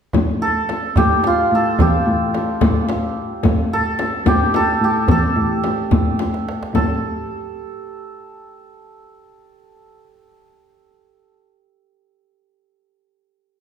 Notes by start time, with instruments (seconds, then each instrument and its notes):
0.13 cello A2, tombak dum, frame drum
0.42 santur A4, tombak ka
0.69 tombak tek, frame drum
0.96 cello A2, santur G4, tombak dum, frame drum
1.24 santur F4, tombak tek, frame drum
1.52 cello A2, santur A4
1.79 cello E2, santur G4, tombak dum, frame drum
2.07 cello A2, tombak ka
2.34 tombak tek, frame drum
2.61 cello A2, frame drum, tombak dum
2.89 tombak tek, frame drum
3.43 cello A2, frame drum, tombak dum
3.71 santur A4, tombak ka
3.99 tombak tek, frame drum
4.26 cello A2, santur G4, frame drum, tombak dum
4.54 santur A4, tombak tek, frame drum
4.81 cello A2, santur G4
5.08 cello E2, santur A4, tombak dum, frame drum
5.36 cello A2, tombak ka
5.64 tombak tek, frame drum
5.91 cello A2, frame drum, tombak dum
6.19 tombak tek, frame drum
6.34 tombak ka
6.49 tombak tek
6.63 tombak ka
6.73 cello A2, santur A4, frame drum, tombak dum